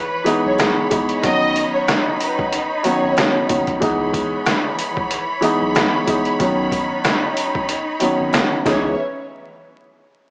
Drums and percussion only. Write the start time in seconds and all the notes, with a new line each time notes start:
0.26 closed hi-hat, sleigh bells
0.58 cross-stick, snare, closed hi-hat, sleigh bells
0.91 kick, closed hi-hat, sleigh bells
1.09 closed hi-hat
1.24 kick, closed hi-hat, sleigh bells
1.56 closed hi-hat, sleigh bells
1.87 cross-stick, snare, closed hi-hat, sleigh bells
2.20 closed hi-hat, sleigh bells
2.39 kick
2.52 closed hi-hat, sleigh bells
2.84 closed hi-hat, sleigh bells
3.17 cross-stick, snare, closed hi-hat, sleigh bells
3.49 kick, closed hi-hat, sleigh bells
3.67 kick, closed hi-hat
3.82 kick, closed hi-hat, sleigh bells
4.14 kick, closed hi-hat, sleigh bells
4.46 cross-stick, snare, closed hi-hat, sleigh bells
4.79 closed hi-hat, sleigh bells
4.97 kick
5.10 closed hi-hat, sleigh bells
5.42 closed hi-hat, sleigh bells
5.75 cross-stick, snare, closed hi-hat, sleigh bells
6.07 kick, closed hi-hat, sleigh bells
6.25 closed hi-hat
6.40 kick, closed hi-hat, sleigh bells
6.72 kick, closed hi-hat, sleigh bells
7.04 cross-stick, snare, closed hi-hat, sleigh bells
7.37 closed hi-hat, sleigh bells
7.55 kick
7.68 closed hi-hat, sleigh bells
8.00 closed hi-hat, sleigh bells
8.33 cross-stick, snare, closed hi-hat, sleigh bells
8.66 kick, snare, sleigh bells